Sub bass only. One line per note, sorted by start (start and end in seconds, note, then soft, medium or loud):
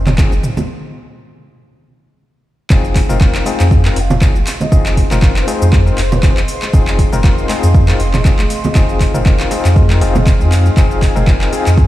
0.00 0.24 F1 loud
0.32 0.39 F1 medium
2.70 3.01 F1 loud
3.09 3.39 F1 loud
3.60 3.89 F2 medium
3.97 4.27 F1 medium
4.36 4.42 F1 medium
4.72 5.02 F1 loud
5.11 5.41 F1 loud
5.62 5.91 F2 medium
5.98 6.28 F1 loud
6.37 6.44 F1 medium
6.74 7.04 F1 loud
7.13 7.42 F1 loud
7.63 7.93 F2 medium
8.00 8.30 F1 loud
8.39 8.46 F1 medium
8.75 9.06 F1 loud
9.14 9.44 F1 loud
9.65 10.03 F2 medium
10.02 10.42 F1 medium
10.41 10.70 F2 medium
10.77 11.07 F1 loud
11.16 11.46 F1 loud
11.67 11.87 F2 medium